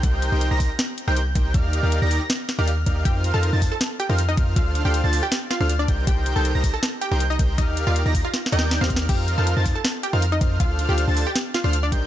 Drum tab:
CC |------------------------|------------------------|------------------------|------------------------|
HH |x--x--x--o--x--x--x--x--|x--x--x--o--x--x--x--x--|x--x--x--o--x--x--x--x--|x--x--x--o--x--x--x--x--|
SD |------------o-----------|------------o--o--------|------------o-----------|------------o--o--------|
BD |o--------o-----------o--|o--------------------o--|o--------o-----------o--|o--------------------o--|

CC |------------------------|------------------------|x-----------------------|------------------------|
HH |x--x--x--o--x--x--x--x--|x--x--x--o--x--x--x--x--|x--x--x--o--x--x--x--x--|x--x--x--o--x--x--x--x--|
SD |------------o-----------|------------o-o-o-o-o-o-|------------o-----------|------------o--o--------|
BD |o--------o-----------o--|o--------o-----------o--|o--------o-----------o--|o--------------------o--|